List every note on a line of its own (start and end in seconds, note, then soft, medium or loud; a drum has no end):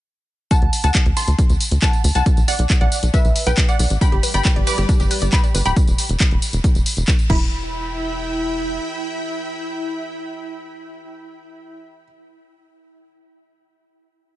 0.51 0.79 F#5 medium
0.51 0.79 A5 medium
0.51 0.79 A5 loud
0.51 kick loud
0.51 closed hi-hat medium
0.51 tambourine soft
0.62 0.69 D2 medium
0.62 closed hi-hat soft
0.73 open hi-hat loud
0.73 tambourine medium
0.84 0.91 D2 medium
0.84 1.12 F#5 medium
0.84 1.12 A5 medium
0.84 closed hi-hat medium
0.84 tambourine soft
0.95 kick loud
0.95 clap loud
0.95 closed hi-hat medium
0.95 tambourine soft
1.06 1.13 D2 medium
1.06 closed hi-hat soft
1.17 1.45 A5 medium
1.17 1.45 C6 medium
1.17 1.45 C6 loud
1.17 open hi-hat loud
1.17 tambourine medium
1.28 1.35 D2 medium
1.28 closed hi-hat medium
1.28 tambourine soft
1.39 kick loud
1.39 closed hi-hat medium
1.39 tambourine soft
1.50 1.57 D2 medium
1.50 closed hi-hat soft
1.50 tambourine soft
1.60 open hi-hat loud
1.60 tambourine medium
1.71 1.79 D2 medium
1.71 closed hi-hat medium
1.71 tambourine soft
1.82 2.11 F#5 medium
1.82 2.11 A5 loud
1.82 kick loud
1.82 clap loud
1.82 closed hi-hat medium
1.82 tambourine soft
1.93 closed hi-hat soft
1.93 tambourine soft
2.04 2.12 D2 medium
2.04 open hi-hat loud
2.04 tambourine medium
2.15 2.23 C2 medium
2.15 2.43 F#5 medium
2.15 2.43 A5 medium
2.15 closed hi-hat medium
2.15 tambourine soft
2.26 kick loud
2.26 closed hi-hat medium
2.26 tambourine soft
2.37 2.44 B1 medium
2.37 closed hi-hat soft
2.37 tambourine soft
2.48 2.76 D5 medium
2.48 2.76 F#5 loud
2.48 2.76 F#5 medium
2.48 open hi-hat loud
2.48 tambourine medium
2.59 2.66 B1 medium
2.59 closed hi-hat medium
2.59 tambourine soft
2.70 kick loud
2.70 clap loud
2.70 closed hi-hat medium
2.70 tambourine soft
2.81 2.88 B1 medium
2.81 3.09 D5 medium
2.81 3.09 F#5 loud
2.81 3.09 F#5 medium
2.81 closed hi-hat soft
2.92 open hi-hat loud
2.92 tambourine medium
3.03 3.10 B1 medium
3.03 closed hi-hat medium
3.03 tambourine soft
3.14 3.42 B4 medium
3.14 3.42 E5 medium
3.14 3.42 E5 loud
3.14 kick loud
3.14 closed hi-hat medium
3.14 tambourine soft
3.25 3.32 B1 medium
3.25 closed hi-hat soft
3.25 tambourine soft
3.36 open hi-hat loud
3.36 tambourine medium
3.47 3.54 B1 medium
3.47 3.65 B4 medium
3.47 3.65 G5 medium
3.47 closed hi-hat medium
3.47 tambourine soft
3.57 kick loud
3.57 clap loud
3.57 closed hi-hat medium
3.57 tambourine soft
3.68 3.97 D5 medium
3.68 3.97 F#5 loud
3.68 closed hi-hat soft
3.68 tambourine soft
3.79 3.87 B1 medium
3.79 open hi-hat loud
3.79 tambourine medium
3.90 3.98 A1 medium
3.90 closed hi-hat medium
3.90 tambourine soft
4.01 5.75 G3 medium
4.01 4.06 D4 medium
4.01 5.75 G4 medium
4.01 5.75 B4 medium
4.01 5.75 D5 medium
4.01 4.30 G5 medium
4.01 4.30 B5 loud
4.01 kick loud
4.01 closed hi-hat medium
4.01 tambourine soft
4.12 4.20 G1 medium
4.12 4.17 G4 medium
4.12 closed hi-hat soft
4.23 4.26 B4 medium
4.23 open hi-hat loud
4.23 tambourine medium
4.34 4.42 G1 medium
4.34 4.37 D5 medium
4.34 4.62 G5 medium
4.34 4.62 B5 loud
4.34 4.62 B5 medium
4.34 closed hi-hat medium
4.34 tambourine soft
4.45 4.48 G5 medium
4.45 kick loud
4.45 clap loud
4.45 closed hi-hat medium
4.45 tambourine soft
4.56 4.63 G1 medium
4.56 4.61 D5 loud
4.56 closed hi-hat soft
4.67 4.70 B4 loud
4.67 4.95 B5 medium
4.67 4.95 D6 loud
4.67 open hi-hat loud
4.67 tambourine medium
4.78 4.85 G1 medium
4.78 4.81 G4 medium
4.78 closed hi-hat medium
4.78 tambourine soft
4.89 4.94 D4 medium
4.89 kick loud
4.89 closed hi-hat medium
4.89 tambourine soft
5.00 5.07 G1 medium
5.00 5.05 G4 medium
5.00 closed hi-hat soft
5.00 tambourine soft
5.11 5.14 B4 medium
5.11 open hi-hat loud
5.11 tambourine medium
5.22 5.29 G1 medium
5.22 5.25 D5 medium
5.22 closed hi-hat soft
5.22 tambourine soft
5.33 5.36 G5 medium
5.33 5.61 G5 medium
5.33 5.61 B5 loud
5.33 kick loud
5.33 clap loud
5.33 closed hi-hat medium
5.33 tambourine soft
5.44 5.47 D5 medium
5.44 closed hi-hat soft
5.44 tambourine soft
5.55 5.62 G1 loud
5.55 5.59 B4 medium
5.55 open hi-hat loud
5.55 tambourine medium
5.66 5.73 D1 medium
5.66 5.68 G4 medium
5.66 5.77 G5 medium
5.66 5.77 B5 loud
5.66 5.77 B5 medium
5.66 closed hi-hat medium
5.66 tambourine soft
5.76 kick loud
5.76 closed hi-hat medium
5.76 tambourine soft
5.87 5.95 E1 medium
5.87 closed hi-hat soft
5.87 tambourine soft
5.98 open hi-hat loud
5.98 tambourine medium
6.09 6.17 E1 medium
6.09 closed hi-hat soft
6.09 tambourine soft
6.20 kick loud
6.20 clap loud
6.20 closed hi-hat medium
6.20 tambourine soft
6.31 6.39 E1 medium
6.31 closed hi-hat soft
6.42 open hi-hat loud
6.42 tambourine medium
6.53 6.60 E1 medium
6.53 closed hi-hat medium
6.53 tambourine soft
6.64 kick loud
6.64 closed hi-hat medium
6.64 tambourine soft
6.75 6.82 E1 medium
6.75 closed hi-hat soft
6.75 tambourine soft
6.86 open hi-hat loud
6.86 tambourine medium
6.97 7.04 E1 medium
6.97 closed hi-hat soft
6.97 tambourine soft
7.08 kick loud
7.08 clap loud
7.08 closed hi-hat soft
7.08 tambourine soft
7.19 closed hi-hat soft
7.19 tambourine soft
7.30 8.79 E1 loud
7.30 7.71 E4 loud
7.30 11.78 E4 medium
7.30 11.78 E5 medium
7.30 11.78 G5 medium
7.30 11.78 B5 medium
7.30 12.02 B5 medium
7.30 kick loud
7.30 crash medium